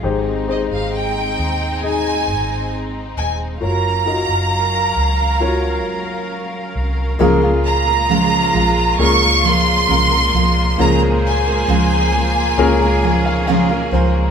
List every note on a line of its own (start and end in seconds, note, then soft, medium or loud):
0.00 0.67 G#1 medium
0.00 1.34 G#2 medium
0.00 3.58 G#3 medium
0.00 3.58 C4 medium
0.00 3.58 D#4 medium
0.00 0.46 D#4 medium
0.00 0.46 G4 medium
0.04 0.46 G#4 medium
0.04 0.47 C5 medium
0.47 1.76 D#4 medium
0.47 1.76 G4 soft
0.47 1.76 G#4 soft
0.47 1.76 C5 medium
0.52 0.61 D#5 medium
0.71 1.34 G#1 medium
0.71 0.93 F5 medium
0.95 1.80 G5 medium
1.39 2.29 D#2 medium
1.82 3.53 D#4 medium
1.82 3.53 G#4 soft
1.82 3.53 D#5 medium
1.82 2.73 G#5 medium
2.28 3.13 G#1 medium
3.17 3.59 D#1 medium
3.17 3.38 G#5 medium
3.61 4.25 F#1 medium
3.61 7.17 F#3 medium
3.61 7.17 C#4 medium
3.61 4.04 F4 medium
3.61 4.04 F#4 soft
3.61 4.04 A#4 medium
3.61 7.17 A#4 medium
3.61 4.05 C#5 medium
3.61 7.17 F5 medium
3.61 6.27 A#5 loud
4.06 5.34 F4 medium
4.06 5.34 F#4 soft
4.06 5.34 A#4 medium
4.06 5.35 D#5 medium
4.29 4.92 F#1 medium
4.96 5.86 C#2 medium
5.40 7.11 F4 medium
5.40 7.11 F#4 medium
5.40 7.11 A#4 medium
5.40 7.12 C#5 medium
5.86 6.72 F#1 medium
6.75 7.17 C2 medium
7.19 8.50 C#2 loud
7.19 14.31 A#2 medium
7.19 7.42 C#3 medium
7.19 8.50 C#3 medium
7.19 7.42 F3 medium
7.19 7.43 G#3 medium
7.19 10.75 G#3 medium
7.19 8.90 A#3 medium
7.19 14.31 A#3 medium
7.19 8.90 C#4 medium
7.19 8.90 F4 medium
7.19 7.42 F4 medium
7.19 10.75 F4 medium
7.19 8.90 G#4 medium
7.19 8.91 A#4 medium
7.19 7.40 A#4 medium
7.41 7.88 G#3 soft
7.41 7.87 F4 medium
7.41 7.85 A#4 medium
7.66 8.96 A#5 loud
7.86 8.09 G#3 soft
7.86 8.10 F4 soft
7.86 8.09 A#4 medium
8.09 8.54 C#3 medium
8.09 8.52 F3 medium
8.09 8.54 G#3 medium
8.09 8.55 F4 medium
8.09 8.55 A#4 medium
8.54 8.96 A#1 medium
8.54 9.21 F3 medium
8.54 9.22 G#3 medium
8.54 9.22 F4 medium
8.54 9.20 A#4 medium
8.99 9.85 C#2 loud
8.99 10.69 A#3 medium
8.99 10.69 C#4 medium
8.99 10.70 F4 medium
8.99 10.70 G#4 medium
8.99 10.70 A#4 medium
8.99 9.45 C#6 loud
9.21 9.44 G#3 soft
9.21 9.45 F4 soft
9.21 9.44 A#4 medium
9.44 9.88 F3 medium
9.44 9.88 G#3 medium
9.44 9.89 F4 medium
9.44 9.89 A#4 medium
9.44 10.80 C6 loud
9.88 10.31 C2 medium
9.88 10.11 C#3 medium
9.88 10.11 F3 medium
9.88 10.12 G#3 medium
9.88 10.11 F4 medium
9.88 10.10 A#4 medium
10.11 10.33 G#3 soft
10.11 10.34 F4 medium
10.11 10.33 A#4 medium
10.33 10.76 C2 medium
10.33 10.77 F3 medium
10.33 10.78 G#3 medium
10.33 10.78 F4 medium
10.33 10.79 A#4 medium
10.78 11.64 C#2 loud
10.78 11.01 C#3 medium
10.78 12.09 C#3 medium
10.78 11.01 F3 medium
10.78 11.01 G#3 medium
10.78 12.48 A#3 medium
10.78 12.49 C#4 medium
10.78 12.49 F4 medium
10.78 11.01 F4 medium
10.78 12.49 G#4 medium
10.78 14.31 G#4 medium
10.78 12.49 A#4 medium
10.78 10.99 A#4 medium
10.78 12.56 C5 medium
10.78 11.00 A#5 loud
11.00 11.47 G#3 soft
11.00 11.46 F4 medium
11.00 11.44 A#4 medium
11.27 13.90 G#5 medium
11.45 11.67 G#3 soft
11.45 11.68 F4 medium
11.45 11.68 A#4 soft
11.67 12.54 C#2 medium
11.67 12.12 C#3 medium
11.67 12.11 F3 medium
11.67 12.12 G#3 medium
11.67 12.14 F4 medium
11.67 12.14 A#4 medium
12.12 12.80 F3 medium
12.12 12.80 F4 medium
12.12 12.78 A#4 medium
12.58 13.88 C#2 loud
12.58 14.28 A#3 medium
12.58 14.28 C#4 medium
12.58 14.31 C#4 medium
12.58 14.28 F4 medium
12.58 14.28 G#4 medium
12.58 14.28 A#4 medium
12.79 13.01 G#3 medium
12.79 13.03 F4 medium
12.79 13.02 A#4 medium
13.02 13.47 F3 medium
13.02 13.47 G#3 medium
13.02 13.48 F4 medium
13.02 13.48 A#4 medium
13.02 13.23 G#5 medium
13.25 13.45 F5 medium
13.47 13.70 C#3 medium
13.47 13.70 F3 loud
13.47 13.70 G#3 loud
13.47 13.69 F4 loud
13.47 13.68 A#4 loud
13.47 13.89 F5 medium
13.69 13.91 G#3 medium
13.69 13.92 F4 medium
13.69 13.92 A#4 medium
13.91 14.31 C#2 medium
13.91 14.31 F3 medium
13.91 14.31 G#3 medium
13.91 14.31 F4 medium
13.91 14.31 A#4 medium
13.91 14.31 C5 medium